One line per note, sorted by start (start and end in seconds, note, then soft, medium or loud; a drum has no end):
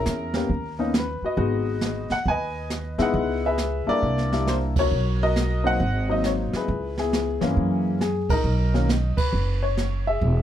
0.00 0.33 C#4 medium
0.00 0.48 E4 medium
0.00 0.32 G#4 medium
0.00 0.76 A#4 medium
0.06 0.47 E2 medium
0.06 snare medium
0.06 hi-hat pedal medium
0.34 0.48 A#3 medium
0.34 0.48 B3 medium
0.34 0.48 C#4 medium
0.34 0.49 G4 medium
0.34 snare medium
0.49 1.18 D#2 medium
0.49 brush sweep soft
0.49 kick soft
0.79 0.93 A#3 medium
0.79 0.93 B3 medium
0.79 0.93 C#4 medium
0.79 0.93 D#4 medium
0.94 snare medium
0.94 hi-hat pedal soft
0.98 1.24 B4 medium
1.22 1.36 F#4 medium
1.22 2.08 B4 medium
1.22 2.15 D#5 medium
1.22 muted upright bass stroke soft
1.37 2.06 G#1 medium
1.37 2.05 G#3 medium
1.37 2.04 B3 medium
1.37 2.05 D#4 medium
1.37 2.05 F#4 medium
1.37 brush sweep soft
1.37 kick soft
1.81 snare medium
1.81 hi-hat pedal medium
2.10 2.27 F#5 medium
2.10 muted upright bass stroke soft
2.10 snare soft
2.26 2.95 D#2 medium
2.26 2.68 G#5 loud
2.26 brush sweep medium
2.26 kick soft
2.30 3.02 B4 medium
2.30 3.12 D#5 medium
2.70 snare medium
2.70 hi-hat pedal medium
2.98 3.13 G#2 medium
2.98 3.55 G#3 medium
2.98 3.55 B3 medium
2.98 3.55 D#4 medium
2.98 3.55 E4 medium
2.98 snare soft
3.02 3.45 B4 medium
3.02 3.42 F#5 medium
3.14 3.83 C#2 medium
3.14 brush sweep soft
3.14 kick soft
3.46 4.01 G#4 medium
3.46 4.00 B4 medium
3.46 3.90 E5 medium
3.58 snare medium
3.58 hi-hat pedal medium
3.87 4.28 G3 medium
3.87 4.28 A#3 medium
3.87 4.28 D4 medium
3.87 4.29 E4 medium
3.87 4.73 G4 medium
3.87 4.73 A#4 medium
3.87 4.50 D5 loud
3.87 muted upright bass stroke soft
4.03 4.87 C2 medium
4.03 brush sweep soft
4.03 kick soft
4.18 snare soft
4.32 4.88 G3 medium
4.32 4.89 A#3 medium
4.32 4.88 D4 medium
4.32 4.89 E4 medium
4.32 snare soft
4.47 4.55 C5 medium
4.47 snare medium
4.47 hi-hat pedal medium
4.76 5.22 F#4 medium
4.76 5.21 A#4 medium
4.76 5.23 C#5 loud
4.76 kick medium
4.76 ride medium
4.92 5.76 B1 medium
4.92 brush sweep soft
5.23 5.77 F#4 medium
5.23 5.77 A#4 medium
5.23 5.65 D#5 loud
5.36 snare medium
5.36 hi-hat pedal medium
5.64 5.78 F#3 medium
5.64 5.78 A#3 medium
5.64 5.78 C4 medium
5.64 5.78 D#4 medium
5.64 6.49 C5 medium
5.64 6.10 D#5 medium
5.64 6.06 F#5 loud
5.80 6.48 G#1 medium
5.80 brush sweep soft
5.80 kick soft
6.09 6.65 F#3 medium
6.09 6.65 A#3 medium
6.09 6.65 C4 medium
6.09 6.65 D#4 medium
6.09 6.26 D#5 medium
6.24 6.32 C#5 medium
6.24 snare medium
6.24 hi-hat pedal medium
6.53 6.98 E4 medium
6.53 6.98 G#4 medium
6.53 6.99 B4 medium
6.53 muted upright bass stroke soft
6.53 snare soft
6.68 7.37 C#2 medium
6.68 brush sweep medium
6.68 kick soft
6.98 7.54 B3 soft
6.98 7.82 E4 medium
6.98 7.82 G#4 medium
6.98 snare soft
7.13 snare medium
7.13 hi-hat pedal soft
7.41 7.55 G2 medium
7.41 7.98 E3 medium
7.41 7.97 G#3 medium
7.41 7.97 A#3 medium
7.41 7.97 C#4 medium
7.41 snare medium
7.57 8.25 F#2 medium
7.57 brush sweep soft
7.57 kick soft
8.01 8.30 G#4 medium
8.01 snare medium
8.01 hi-hat pedal soft
8.29 8.43 A#1 medium
8.29 9.15 D#4 medium
8.29 8.85 A#4 loud
8.29 kick medium
8.29 ride medium
8.44 9.13 B1 medium
8.44 brush sweep medium
8.74 8.87 D#3 medium
8.74 8.88 F#3 medium
8.74 8.87 A#3 medium
8.74 8.88 C#4 medium
8.74 snare soft
8.89 snare medium
8.89 hi-hat pedal soft
9.17 9.63 B4 medium
9.17 muted upright bass stroke soft
9.17 kick medium
9.17 ride medium
9.33 10.17 F#1 medium
9.33 brush sweep soft
9.63 10.08 C#5 medium
9.77 snare medium
9.77 hi-hat pedal soft
10.07 10.42 G#4 medium
10.07 10.42 E5 medium
10.21 10.42 E1 medium
10.21 brush sweep soft
10.21 kick soft